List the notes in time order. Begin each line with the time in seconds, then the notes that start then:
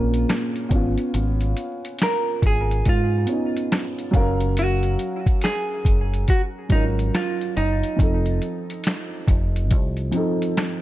Already playing: A#1 A#2 A#3 C4 C#4 F4 A#4
0.14 closed hi-hat
0.29 finger snap, snare, closed hi-hat
0.56 closed hi-hat
0.69 G#1 B3 C#4, kick, closed hi-hat
0.75 F4
0.97 closed hi-hat
1.14 G#1, closed hi-hat
1.41 closed hi-hat
1.57 closed hi-hat
1.85 closed hi-hat
1.99 finger snap, snare, closed hi-hat
2.03 A#4
2.42 G#1, kick, closed hi-hat
2.47 G#4
2.71 closed hi-hat
2.85 G#2 F4, kick, closed hi-hat
3.25 B3 C#4, closed hi-hat
3.32 D#4
3.57 closed hi-hat
3.72 finger snap, snare, closed hi-hat
3.98 closed hi-hat
4.11 F#1 F#3 C#4 F5, kick, closed hi-hat
4.17 A#4
4.40 closed hi-hat
4.57 F#4, closed hi-hat
4.83 closed hi-hat
4.99 closed hi-hat
5.26 kick, closed hi-hat
5.41 G#4, finger snap, snare, closed hi-hat
5.85 F#1, kick, closed hi-hat
6.14 closed hi-hat
6.28 F#4, kick, closed hi-hat
6.69 G#1 F#3 C#4 D#4 F4, kick, closed hi-hat
6.75 A#4
6.99 closed hi-hat
7.14 F4, finger snap, snare, closed hi-hat
7.41 closed hi-hat
7.57 F#1 D#4, closed hi-hat
7.83 closed hi-hat
7.96 F1 F3 C4, kick, closed hi-hat
8.01 D#4 A4
8.26 closed hi-hat
8.42 closed hi-hat
8.70 closed hi-hat
8.84 finger snap, snare, closed hi-hat
9.28 F1, kick, closed hi-hat
9.56 closed hi-hat
9.71 C2, kick, closed hi-hat
9.97 closed hi-hat
10.11 F3 C4 D#4, closed hi-hat
10.17 A4
10.42 closed hi-hat
10.57 finger snap, snare, closed hi-hat